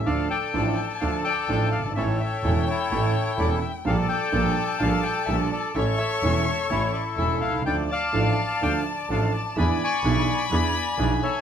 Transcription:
0.06 double bass D2, grand piano D2 D3 F3 A3 D4 A4, bandoneon D4 F4 A4 D5 F5, violin A5
0.30 bandoneon D5 G5
0.54 grand piano A1 A2 F3 A3 D4 A4, double bass A1, bandoneon D4 F4 A4
1.00 grand piano D2 D3 F3 A3 D4 A4, double bass D2, bandoneon D4 F4 A4 D5 F5
1.24 bandoneon D5 G5
1.48 double bass A1, grand piano A1 A2 F3 A3 D4 A4, bandoneon D4 F4 A4
1.72 double bass G1, bandoneon F5
1.79 grand piano F#1
1.85 grand piano G1
1.89 grand piano G#1
1.95 double bass A1, grand piano A1 A2 E3 A3 C#4 A4, bandoneon C#4 E4 A4 C#5 E5, violin G5
2.20 bandoneon A4 C#5 E5
2.44 double bass E1, grand piano E1 E2 E3 A3 C#4 A4, bandoneon C#4 E4 A4
2.67 bandoneon E4 A4 C#5
2.91 double bass A1, grand piano A1 A2 E3 A3 C#4 A4, bandoneon C#4 E4 A4
3.38 double bass E1, grand piano E1 E2 E3 A3 C#4 A4, bandoneon C#4 E4 A4 D5
3.61 bandoneon E5
3.85 grand piano A#1 A#2 G3 A#3 D4 A4, double bass A#1, bandoneon A#3 G4 A4 F5, violin A5
3.89 bandoneon A4 D5
4.09 bandoneon D5 G5
4.32 grand piano A#1 A#2 G3 A#3 D4 A4, double bass A#1, bandoneon A#3 G4 A4
4.79 grand piano A#1 A#2 G3 A#3 D4 A4, double bass A#1, bandoneon A#3 G4 A4 D5 F5
5.03 bandoneon G5
5.25 double bass A#1, grand piano A#1 A#2 G3 A#3 D4 A4, bandoneon A#3 G4 A4 E5
5.52 bandoneon D5
5.74 double bass A1, grand piano A1 A2 E3 A3 C#4 A4, bandoneon C#4 E4 A4 C#5 E5, violin C#6
5.98 bandoneon A4 C#5 E5
6.23 double bass E1, grand piano E1 E2 E3 A3 C#4 A4, bandoneon C#4 E4 A4
6.69 double bass A1, grand piano A1 A2 E3 A3 C#4 A4, bandoneon C#4 E4 A4 C#5
6.93 bandoneon D5
7.17 double bass E1, grand piano E1 E2 E3 A3 C#4 A4, bandoneon C#4 E4 A4 E5
7.41 double bass C2, bandoneon F5
7.49 grand piano B1
7.55 grand piano C2
7.62 grand piano C#2, violin A5
7.66 double bass D2, grand piano D2 D3 F3 A3 D4 A4, bandoneon D4 F4 A4 D5 G5
7.91 bandoneon D5 F5 A5
8.12 grand piano A1 A2 F3 A3 D4 A4, double bass A1, bandoneon D4 F4 A4
8.61 double bass D2, grand piano D2 D3 F3 A3 D4 A4, bandoneon D4 F4 A4 D5 G5
9.09 double bass A1, grand piano A1 A2 F3 A3 D4 A4, bandoneon D4 F4 A4 F5
9.37 bandoneon A5
9.55 double bass E2, grand piano E2 E3 B3 D4 G#4, bandoneon D4 E4 G#4 D5 G#5, violin B5
9.59 bandoneon B5
9.84 bandoneon G#5 C#6
10.03 double bass B1, grand piano B1 B2 E3 B3 D4 G#4, bandoneon D4 E4 G#4
10.50 double bass E2, grand piano E2 E3 B3 D4 G#4, bandoneon D4 E4 G#4 D5 G#5
10.54 bandoneon B5
10.98 double bass B1, grand piano B1 B2 E3 B3 D4 G#4, bandoneon D4 E4 G#4 D5
11.23 bandoneon A4 C#5 E5

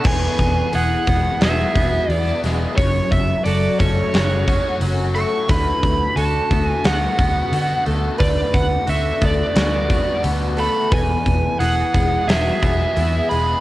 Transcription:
0.04 fingered electric bass E1, overdriven electric guitar E2, clean electric guitar E2, twelve-string acoustic guitar B4, lead electric guitar G#5, kick, crash
0.38 fingered electric bass E1, kick, open hi-hat
0.73 fingered electric bass E1, overdriven electric guitar E3, twelve-string acoustic guitar G#4, clean electric guitar G#4, lead electric guitar F#5, open hi-hat
1.07 fingered electric bass E1, overdriven electric guitar G#3, clean electric guitar B3, twelve-string acoustic guitar G#4, kick, open hi-hat
1.41 fingered electric bass E1, overdriven electric guitar B3, twelve-string acoustic guitar F#4, clean electric guitar G#4, lead electric guitar E5, snare, open hi-hat
1.75 fingered electric bass E1, clean electric guitar B3, overdriven electric guitar E4, kick, open hi-hat
2.09 fingered electric bass E2, clean electric guitar E3, overdriven electric guitar B3, twelve-string acoustic guitar E4, lead electric guitar D5, open hi-hat
2.44 fingered electric bass E1, overdriven electric guitar G#3, clean electric guitar G#3, twelve-string acoustic guitar G#4, snare, open hi-hat
2.76 fingered electric bass F#1, overdriven electric guitar F#2, clean electric guitar F#2, lead electric guitar C#5, twelve-string acoustic guitar C#5, kick, open hi-hat
3.12 fingered electric bass F#1, lead electric guitar E5, kick, open hi-hat
3.44 fingered electric bass F#1, overdriven electric guitar F#3, clean electric guitar F#4, twelve-string acoustic guitar A4, lead electric guitar D5, open hi-hat
3.79 fingered electric bass F#1, overdriven electric guitar A3, clean electric guitar C#4, twelve-string acoustic guitar A4, lead electric guitar C#5, kick, open hi-hat
4.13 fingered electric bass F#1, overdriven electric guitar C#4, clean electric guitar F#4, twelve-string acoustic guitar G#4, snare, open hi-hat
4.48 clean electric guitar C#4, overdriven electric guitar F#4, kick, open hi-hat
4.80 fingered electric bass F#1, clean electric guitar F#3, overdriven electric guitar C#4, twelve-string acoustic guitar F#4, open hi-hat
5.15 overdriven electric guitar A3, clean electric guitar A3, twelve-string acoustic guitar A4, lead electric guitar C#6, open hi-hat
5.48 fingered electric bass D2, overdriven electric guitar D3, clean electric guitar D3, twelve-string acoustic guitar B4, lead electric guitar B5, kick, open hi-hat
5.83 fingered electric bass D2, kick, open hi-hat
6.16 fingered electric bass D2, overdriven electric guitar D3, clean electric guitar F#4, twelve-string acoustic guitar A4, lead electric guitar A5, open hi-hat
6.51 fingered electric bass D2, overdriven electric guitar A3, clean electric guitar B3, twelve-string acoustic guitar A4, kick, open hi-hat
6.65 lead electric guitar G#5
6.84 fingered electric bass D2, overdriven electric guitar B3, clean electric guitar F#4, twelve-string acoustic guitar G#4, lead electric guitar F#5, snare, open hi-hat
7.18 fingered electric bass D2, clean electric guitar B3, overdriven electric guitar F#4, kick, open hi-hat
7.52 fingered electric bass D3, clean electric guitar D3, overdriven electric guitar B3, twelve-string acoustic guitar F#4, open hi-hat
7.86 fingered electric bass D2, clean electric guitar A3, overdriven electric guitar A3, twelve-string acoustic guitar A4, open hi-hat
8.18 fingered electric bass D2, clean electric guitar D3, overdriven electric guitar D3, twelve-string acoustic guitar B4, lead electric guitar D5, kick, open hi-hat
8.54 fingered electric bass D2, lead electric guitar F#5, kick, open hi-hat
8.87 fingered electric bass D2, overdriven electric guitar D3, clean electric guitar F#4, twelve-string acoustic guitar A4, lead electric guitar E5, open hi-hat
9.21 fingered electric bass D2, overdriven electric guitar A3, clean electric guitar B3, twelve-string acoustic guitar A4, kick, open hi-hat
9.25 lead electric guitar D5
9.55 fingered electric bass D2, overdriven electric guitar B3, clean electric guitar F#4, twelve-string acoustic guitar G#4, snare, open hi-hat
9.88 clean electric guitar B3, overdriven electric guitar F#4, kick, open hi-hat
10.23 fingered electric bass D2, clean electric guitar D3, overdriven electric guitar B3, twelve-string acoustic guitar F#4, open hi-hat
10.57 clean electric guitar A3, overdriven electric guitar A3, twelve-string acoustic guitar A4, lead electric guitar B5, open hi-hat
10.92 fingered electric bass E1, overdriven electric guitar E2, clean electric guitar E2, twelve-string acoustic guitar B4, lead electric guitar G#5, kick, open hi-hat
11.26 fingered electric bass E1, kick, open hi-hat
11.59 fingered electric bass E1, overdriven electric guitar E3, clean electric guitar G#4, twelve-string acoustic guitar G#4, lead electric guitar F#5, open hi-hat
11.93 fingered electric bass E1, overdriven electric guitar G#3, clean electric guitar B3, twelve-string acoustic guitar G#4, kick, open hi-hat
12.28 fingered electric bass E1, overdriven electric guitar B3, twelve-string acoustic guitar F#4, clean electric guitar G#4, lead electric guitar E5, snare, open hi-hat
12.62 fingered electric bass E1, clean electric guitar B3, overdriven electric guitar G#4, kick, open hi-hat
12.96 fingered electric bass E2, clean electric guitar E3, overdriven electric guitar B3, twelve-string acoustic guitar E4, open hi-hat
13.29 fingered electric bass E1, clean electric guitar G#3, overdriven electric guitar G#3, twelve-string acoustic guitar G#4, lead electric guitar B5, open hi-hat

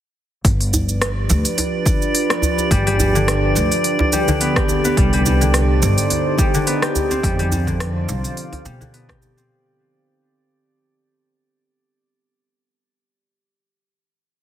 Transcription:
0.45 upright bass G1, ambient pad F3 D4 G4 B4, synth texture D5, kick, open hi-hat, djembe slap, shaker
0.60 open hi-hat
0.73 djembe tone, djembe bass, shaker
0.89 shaker
1.02 cross-stick, open hi-hat, shaker
1.29 upright bass D2, djembe slap, shaker
1.45 open hi-hat, shaker
1.58 open hi-hat, djembe tone, shaker
1.85 kick, djembe slap, djembe tone, shaker
2.02 shaker
2.15 open hi-hat, shaker
2.30 cross-stick, open hi-hat
2.42 djembe bass, shaker
2.58 djembe tone, shaker
2.71 upright bass G1, harp G3, kick, open hi-hat, djembe slap, shaker
2.87 harp G3, open hi-hat
2.99 harp G3, djembe tone, djembe bass, shaker
3.15 harp D3, shaker
3.28 cross-stick, open hi-hat, shaker
3.55 upright bass D2, djembe slap, shaker
3.72 open hi-hat, shaker
3.84 open hi-hat, shaker
3.99 djembe slap, djembe bass
4.13 harp G3, djembe tone, shaker
4.28 harp D3, djembe bass, shaker
4.41 harp B3, open hi-hat, djembe tone, shaker
4.56 harp G4, kick, cross-stick, open hi-hat
4.68 djembe tone, shaker
4.85 harp B3, djembe slap, shaker
4.97 upright bass C2, harp G3, ambient pad D#4 C5, kick, open hi-hat, djembe slap, shaker
5.13 harp G3, open hi-hat
5.25 harp G3, djembe tone, djembe bass, shaker
5.41 harp D3, shaker
5.54 cross-stick, open hi-hat, shaker
5.82 upright bass G1, djembe slap, shaker
5.98 open hi-hat, shaker
6.10 open hi-hat, djembe tone, shaker
6.38 harp G3, kick, djembe slap, djembe tone, shaker
6.54 harp D3, shaker
6.67 harp B3, open hi-hat, shaker
6.82 harp G4, cross-stick, open hi-hat
6.96 djembe bass, shaker
7.11 harp C4, djembe tone, shaker
7.23 upright bass F2, ambient pad F3 C5 F5, harp G3, kick, open hi-hat, djembe slap, shaker
7.39 harp G3, open hi-hat
7.52 harp G3, djembe tone, djembe bass, shaker
7.67 harp D3, kick, shaker
7.80 cross-stick, open hi-hat, shaker
8.09 upright bass C2, djembe slap, shaker
8.24 open hi-hat, shaker
8.37 open hi-hat, shaker
8.52 open hi-hat, djembe slap, djembe bass
8.65 upright bass B2, harp G3, djembe tone, shaker
8.81 harp D3, djembe bass, shaker
8.93 harp B3, open hi-hat, djembe tone, shaker
9.09 harp G4, kick, cross-stick, open hi-hat
9.21 djembe tone, shaker
9.37 harp C4, djembe slap, shaker

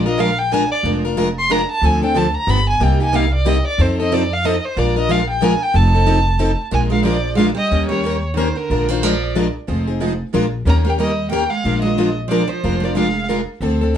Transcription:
Already playing: upright bass A#1
0.06 steel-string acoustic guitar D4 F4 A#4, violin D#5
0.19 steel-string acoustic guitar F3 G#3 D4 F4 A#4, violin F5
0.39 violin G5
0.53 steel-string acoustic guitar F3 G#3 D4 F4 A#4, violin G#5
0.72 violin D5
0.83 upright bass F1, steel-string acoustic guitar F3 G#3 D4 F4 A#4
1.05 steel-string acoustic guitar D4 F4 A#4
1.17 steel-string acoustic guitar F3 G#3 D4 F4 A#4
1.39 violin C6
1.50 steel-string acoustic guitar F3 G#3 D4 F4 A#4, violin A#5
1.72 violin A5
1.82 upright bass D2, steel-string acoustic guitar D3 F3 C4 D4 A4
1.86 violin G#5
2.02 steel-string acoustic guitar C4 D4 A4, violin G5
2.16 steel-string acoustic guitar D3 F3 C4 D4 A4, violin A5
2.37 violin A#5
2.47 upright bass G1, steel-string acoustic guitar D3 F3 B3 D4 G4, violin B5
2.70 violin G#5
2.80 upright bass C2, steel-string acoustic guitar C3 G3 A#3 D#4 G4, violin G5
3.00 steel-string acoustic guitar A#3 D#4 G4, violin G#5
3.13 steel-string acoustic guitar C3 G3 A#3 D#4 G4, violin F5
3.35 violin D5
3.46 steel-string acoustic guitar C3 G3 A#3 D#4 G4, violin D#5
3.67 violin D5
3.78 upright bass F2, steel-string acoustic guitar F3 C4 D#4 A4, violin C5
4.00 steel-string acoustic guitar C4 D#4 A4, violin D#5
4.12 steel-string acoustic guitar F3 C4 D#4 A4, violin D5
4.33 violin F5
4.44 steel-string acoustic guitar F3 C4 D#4 A4, violin D#5
4.66 violin C5
4.77 upright bass A#1, steel-string acoustic guitar F3 G#3 D4 F4 A#4, violin D5
4.96 steel-string acoustic guitar D4 F4 A#4, violin D#5
5.09 steel-string acoustic guitar F3 G#3 D4 F4 A#4, violin F5
5.30 violin G5
5.42 steel-string acoustic guitar F3 G#3 D4 F4 A#4, violin G#5
5.63 violin G5
5.74 upright bass F1, steel-string acoustic guitar F3 C4 D#4 A4, violin A5
5.95 steel-string acoustic guitar C4 D#4 A4
6.07 steel-string acoustic guitar F3 C4 D#4 A4
6.39 steel-string acoustic guitar F3 C4 D#4 A4
6.71 upright bass A#1, steel-string acoustic guitar F3 G#3 D4 F4 A#4, violin G#5
6.90 steel-string acoustic guitar G#3 D4 F4 A#4, violin F5
7.03 steel-string acoustic guitar F3 G#3 D4 F4 A#4, violin D5
7.35 steel-string acoustic guitar F3 G#3 D4 F4 A#4, violin F5
7.55 steel-string acoustic guitar G3, violin D#5
7.71 upright bass D#2, steel-string acoustic guitar D#3 A#3 C#4 G4 A#4
7.89 steel-string acoustic guitar G3 C#4 G4 A#4, violin C#5
8.05 steel-string acoustic guitar D#3 A#3 C#4 G4 A#4
8.34 steel-string acoustic guitar D#3 A#3 C#4 A#4, violin C5
8.38 steel-string acoustic guitar G4
8.55 steel-string acoustic guitar D3, violin A#4
8.70 upright bass A#1, steel-string acoustic guitar F3 G#3 D4 F4 A#4
8.88 steel-string acoustic guitar D#3 D4 F4 A#4, violin C5
9.03 steel-string acoustic guitar F3 G#3 D4 F4 A#4, violin D5
9.36 steel-string acoustic guitar F3 G#3 D4 F4 A#4
9.68 upright bass F1, steel-string acoustic guitar F3 G#3 C4 D#4 F4 G#4 C5
9.88 steel-string acoustic guitar C4 D#4 G#4
10.00 steel-string acoustic guitar F3 G#3 C4 D#4 F4 G#4 C5
10.34 upright bass A#1, steel-string acoustic guitar F3 G#3 D4 F4 A#4
10.65 upright bass D#2, steel-string acoustic guitar D#3 A#3 C#4 G4 A#4, violin A#5
10.85 steel-string acoustic guitar A#3 C#4 G4 A#4
10.89 violin G5
10.99 steel-string acoustic guitar D#3 G3 A#3 C#4 G4 A#4, violin D#5
11.30 steel-string acoustic guitar D#3 A#3 C#4 G4 A#4, violin G5
11.50 steel-string acoustic guitar G#3, violin F5
11.64 upright bass A#1, steel-string acoustic guitar F3 G#3 D4 F4 A#4
11.82 steel-string acoustic guitar G#3 F4 A#4, violin D#5
11.86 steel-string acoustic guitar D4
11.98 steel-string acoustic guitar F3 G#3 D4 F4 A#4
12.28 steel-string acoustic guitar F3 G#3 D4 F4 A#4, violin D5
12.48 steel-string acoustic guitar F3, violin C5
12.64 upright bass F1, steel-string acoustic guitar F3 G#3 D4 F4 A#4
12.80 steel-string acoustic guitar F3 A#4
12.85 steel-string acoustic guitar D4 F4, violin D5
12.95 steel-string acoustic guitar F3 G#3 D4 F4 A#4, violin F5
13.30 steel-string acoustic guitar F3 G#3 D4 F4 A#4
13.61 upright bass D2, steel-string acoustic guitar D3 F3 C4 D4 A4
13.81 steel-string acoustic guitar C4 D4 A4
13.94 steel-string acoustic guitar D3

